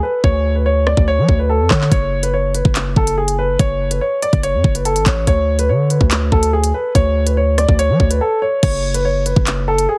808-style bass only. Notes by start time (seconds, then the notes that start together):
0.24 D2
0.97 D2
1.18 F#3
1.29 D2
1.60 F2
1.71 D3
1.92 F#1
2.65 F#1
2.96 F#1
3.59 F#1
4.33 F#1
4.54 F#2
4.64 F#1
4.96 G#1
5.06 A1
5.27 D2
5.69 D3
6.01 D2
6.32 D2
6.95 D2
7.69 D2
7.89 F#3
8.00 D2
8.63 F#1
9.36 F#1